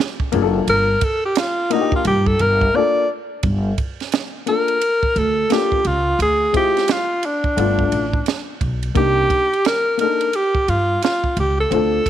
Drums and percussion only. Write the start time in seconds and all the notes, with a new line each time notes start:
0.00 snare
0.20 kick
0.32 ride
0.68 ride
1.01 kick, ride
1.35 snare, hi-hat pedal, ride
1.71 ride
1.92 kick
2.05 ride
2.26 kick
2.39 ride
2.61 kick
3.43 kick, ride
3.78 kick, ride
4.00 snare, ride
4.12 snare, hi-hat pedal, ride
4.47 ride
4.68 ride
4.82 ride
5.03 kick
5.16 ride
5.50 snare, hi-hat pedal, ride
5.72 kick
5.85 ride
6.20 ride
6.54 kick, ride
6.77 snare, ride
6.88 snare, hi-hat pedal, ride
7.23 ride
7.44 kick
7.58 ride
7.79 kick
7.92 ride
8.13 kick
8.26 snare, hi-hat pedal, ride
8.61 kick, ride
8.83 ride
8.95 kick, ride
9.30 kick, ride
9.53 ride
9.65 snare, hi-hat pedal, ride
9.99 ride
10.21 ride
10.33 ride
10.55 kick
10.68 ride
11.02 snare, hi-hat pedal, ride
11.24 kick
11.37 ride
11.72 ride
12.06 kick, ride